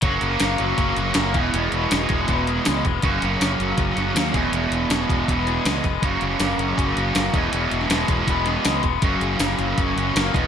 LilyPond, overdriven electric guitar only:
\new Staff \with { instrumentName = "Overdriven electric guitar" } { \clef bass \time 4/4 \key fis \mixolydian \tempo 4 = 160 fis8 ais8 ais8 fis8 cis'8 fis'8 ais8 e,8 | e,8 b,8 gis8 e8 b8 gis'8 gis8 b8 | fis,8 cis8 ais8 fis8 cis'8 fis'8 ais8 e,8 | e,8 b,8 gis8 e8 b8 gis'8 gis8 b8 |
fis,8 cis8 ais8 fis8 cis'8 fis'8 ais8 e,8 | e,8 b,8 gis8 e8 b8 gis'8 gis8 b8 | fis,8 cis8 ais8 fis8 cis'8 fis'8 ais8 e,8 | }